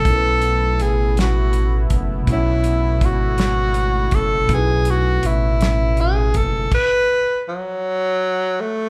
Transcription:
Already playing: tenor saxophone A4
0.01 tine electric piano B2 A3
0.05 analog synth bass B1, analog synth pad A3 B3 E4, tine electric piano C#4 E4, kick, closed hi-hat
0.11 tine electric piano A#4
0.17 tine electric piano B4
0.42 closed hi-hat
0.80 analog synth bass A1, tenor saxophone G#4, closed hi-hat
1.17 tenor saxophone F#4, snare, closed hi-hat
1.53 closed hi-hat
1.90 analog synth bass F#1, kick, closed hi-hat
2.23 tine electric piano B2 A3
2.27 analog synth bass B1, tine electric piano C#4 E4, kick, closed hi-hat
2.32 tenor saxophone E4, tine electric piano C#5
2.64 closed hi-hat
3.01 analog synth bass G#1, tenor saxophone F#4, kick, closed hi-hat
3.38 snare, closed hi-hat
3.74 closed hi-hat
4.11 analog synth bass F#1, tenor saxophone A4, kick, closed hi-hat
4.45 tine electric piano B2 A3
4.49 analog synth bass B1, tine electric piano C#4 D#4, kick, closed hi-hat
4.54 tenor saxophone G#4, tine electric piano B4
4.59 tine electric piano E4
4.85 closed hi-hat
4.90 tenor saxophone F#4
5.23 analog synth bass A1, tenor saxophone E4, closed hi-hat
5.61 snare, closed hi-hat
5.97 tenor saxophone G#4, closed hi-hat
6.34 analog synth bass F#1, tenor saxophone A4, kick, closed hi-hat
6.72 tenor saxophone B4, kick, crash
7.49 tenor saxophone F#3
8.60 tenor saxophone A3

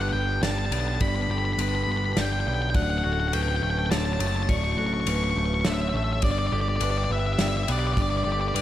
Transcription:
Already playing: picked electric bass G1, clean electric guitar G2 D4 G4, string section D3 G3 B3 G4 A4, vibraphone B4
0.02 lead electric guitar F#5
0.09 lead electric guitar F#5 G5
0.13 picked electric bass G1, clean electric guitar B3
0.41 picked electric bass G1, clean electric guitar G3, vibraphone D5, lead electric guitar A5, snare, ride
0.51 lead electric guitar A5
0.58 lead electric guitar A5
0.66 lead electric guitar A5
0.71 picked electric bass B1, clean electric guitar B3, lead electric guitar A5, ride
0.80 lead electric guitar A5
0.88 lead electric guitar A5
0.95 lead electric guitar A5
1.01 picked electric bass G1, clean electric guitar G2, vibraphone D5, lead electric guitar B5, kick, ride
1.08 lead electric guitar B5
1.16 lead electric guitar B5
1.22 lead electric guitar B5
1.28 picked electric bass G1, clean electric guitar G4, vibraphone A4, lead electric guitar B5
1.38 lead electric guitar B5
1.45 lead electric guitar B5
1.53 picked electric bass G1, lead electric guitar B5
1.58 clean electric guitar D4, vibraphone B4, lead electric guitar B5, ride
1.69 lead electric guitar B5
1.75 lead electric guitar B5
1.83 picked electric bass G1, clean electric guitar B3, lead electric guitar B5
1.92 lead electric guitar B5
1.97 lead electric guitar B5
2.05 lead electric guitar B5
2.13 picked electric bass G1, clean electric guitar G3, lead electric guitar B5, snare, ride
2.17 vibraphone D5, lead electric guitar G5
2.25 lead electric guitar G5
2.33 lead electric guitar G5
2.40 lead electric guitar G5
2.46 picked electric bass B1, clean electric guitar B3, lead electric guitar G5
2.54 lead electric guitar G5
2.62 lead electric guitar G5
2.70 vibraphone D5, lead electric guitar G5
2.74 picked electric bass D1, clean electric guitar D2, string section F#3 A3 C#4, lead electric guitar F#5, kick, ride
2.83 lead electric guitar F#5
2.90 lead electric guitar F#5
2.98 lead electric guitar F#5
3.03 picked electric bass D1, clean electric guitar F#4, vibraphone A4, lead electric guitar F#5
3.13 lead electric guitar F#5
3.20 lead electric guitar F#5
3.28 lead electric guitar F#5
3.33 picked electric bass D1, clean electric guitar C#4, vibraphone B4, lead electric guitar G5, ride
3.43 lead electric guitar G5
3.48 lead electric guitar G5
3.56 lead electric guitar G5
3.61 picked electric bass D1, clean electric guitar A3, lead electric guitar G5
3.70 lead electric guitar G5
3.79 lead electric guitar G5
3.86 lead electric guitar G5
3.90 picked electric bass D1, clean electric guitar D3, vibraphone C#5, lead electric guitar A5, snare, ride
3.98 lead electric guitar A5
4.05 lead electric guitar A5
4.13 lead electric guitar A5
4.19 picked electric bass F#1, clean electric guitar A3, lead electric guitar A5, ride
4.27 lead electric guitar A5
4.36 lead electric guitar A5
4.43 lead electric guitar A5
4.49 picked electric bass D1, clean electric guitar D2, vibraphone D5, lead electric guitar C#6, kick, ride
4.57 lead electric guitar C#6
4.64 lead electric guitar C#6
4.72 lead electric guitar C#6
4.77 picked electric bass D1, clean electric guitar F#4, vibraphone A4, lead electric guitar C#6
4.86 lead electric guitar C#6
4.94 lead electric guitar C#6
5.01 lead electric guitar C#6
5.06 picked electric bass D1, clean electric guitar C#4, vibraphone B4, lead electric guitar C#6, ride
5.16 lead electric guitar C#6
5.24 lead electric guitar C#6
5.31 lead electric guitar C#6
5.35 picked electric bass D1, clean electric guitar A3, lead electric guitar C#6
5.46 lead electric guitar C#6
5.54 lead electric guitar C#6
5.61 picked electric bass D1, clean electric guitar D3, vibraphone C#5, lead electric guitar C#6, snare, ride
5.66 lead electric guitar E5
5.74 lead electric guitar E5
5.82 lead electric guitar E5
5.89 lead electric guitar E5
5.93 picked electric bass A1, clean electric guitar A3, lead electric guitar E5
6.04 lead electric guitar E5
6.13 lead electric guitar E5
6.22 picked electric bass G1, clean electric guitar G2, string section D3 G3 B3 G4, vibraphone D5, lead electric guitar D5, kick, ride
6.31 lead electric guitar D5
6.39 lead electric guitar D5
6.47 lead electric guitar D5
6.52 picked electric bass G1, clean electric guitar G4, vibraphone A4, lead electric guitar D5
6.61 lead electric guitar D5
6.69 lead electric guitar D5
6.76 picked electric bass G1, lead electric guitar D5
6.81 clean electric guitar D4, vibraphone B4, lead electric guitar D5, ride
6.91 lead electric guitar D5
6.98 lead electric guitar D5
7.04 lead electric guitar D5
7.09 picked electric bass G1, clean electric guitar B3, lead electric guitar E5
7.19 lead electric guitar E5
7.27 lead electric guitar E5
7.33 lead electric guitar E5
7.38 picked electric bass G1, clean electric guitar G3, vibraphone D5, lead electric guitar E5, snare, ride
7.48 lead electric guitar E5
7.57 lead electric guitar E5
7.63 lead electric guitar E5
7.68 picked electric bass B1, clean electric guitar B3, lead electric guitar D5, ride
7.79 lead electric guitar D5
7.87 lead electric guitar D5
7.94 picked electric bass G1, lead electric guitar D5, kick, ride
7.98 clean electric guitar G2, vibraphone D5, lead electric guitar D5
8.10 lead electric guitar D5
8.17 lead electric guitar D5
8.24 picked electric bass G1, clean electric guitar G4, vibraphone A4, lead electric guitar D5
8.32 lead electric guitar D5
8.41 lead electric guitar D5
8.48 lead electric guitar D5
8.54 picked electric bass G1, clean electric guitar D4, vibraphone B4, lead electric guitar D5, ride

